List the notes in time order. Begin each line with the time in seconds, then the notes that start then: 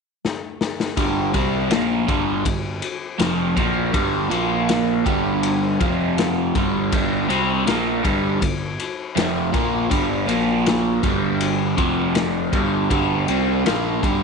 0.25 snare
0.61 snare
0.80 snare
0.97 G1 G2 D3 G3, kick, ride
1.33 C2 C3 G3 C4, kick, ride
1.70 A#1 A#2 F3 A#3, snare, ride
2.07 G1 G2 D3 G3, kick, ride
2.45 G1 G2 D3, kick, ride
2.82 ride
3.19 F1 F2 C3 F3, snare, ride
3.56 A#1 A#2 F3 A#3, kick, ride
3.93 G1 G2 D3 G3, kick, ride
4.30 A#1 A#2 F3 A#3, ride
4.69 snare, ride
5.05 G1 G2 D3 G3, kick, ride
5.43 ride
5.80 F1 F2 C3 F3, kick, ride
6.18 snare, ride
6.55 G1 G2 D3 G3, kick, ride
6.92 G1 G2 D3 G3, kick, ride
7.28 C2 C3 G3 C4, ride
7.66 A#1 A#2 F3 A#3, snare, ride
8.03 G1 G2 D3 G3, kick, ride
8.41 G1 G2 D3, kick, ride
8.79 ride
9.15 F1 F2 C3 F3, snare, ride
9.53 A#1 A#2 F3 A#3, kick, ride
9.90 G1 G2 D3 G3, kick, ride
10.27 A#1 A#2 F3 A#3, ride
10.66 snare, ride
11.03 G1 G2 D3 G3, kick, ride
11.41 ride
11.77 F1 F2 C3 F3, kick, ride
12.15 snare, ride
12.53 G1 G2 D3 G3, kick, ride
12.90 G1 G2 D3 G3, kick, ride
13.28 C2 C3 G3 C4, ride
13.65 A#1 A#2 F3 A#3, snare, ride
14.02 G1 G2 D3 G3, kick, ride